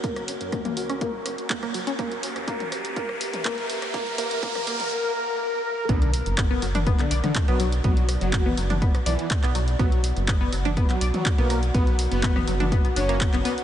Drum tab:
HH |xxoxxxoxx-oxxxox|xxoxxxoxx-oxxxox|xxoxxxox--------|xxoxx-oxxxoxxxox|
CP |------------x---|------------x---|----------------|----x----x--x---|
SD |-r--r--r--r--r--|r--r--r--r--r--r|--r--r----------|----r------r----|
T2 |-----o----------|-----o-----o----|-----o-o--------|-------o---o----|
BD |o---o---o---o---|o---o---o---o---|o---o-----------|o---o---o---o---|

HH |xxoxx-oxxxoxxxox|xxoxx-oxxxoxxxox|xxoxx-oxxxoxxxox|
CP |----x-------xx--|----x----x--x---|----x-------xx--|
SD |--r------r------|r------r------r-|-----r------r---|
T2 |-----o-o--------|-------o---o----|-----o-o--------|
BD |o---o---o---o---|o---o---o---o---|o---o---o---o---|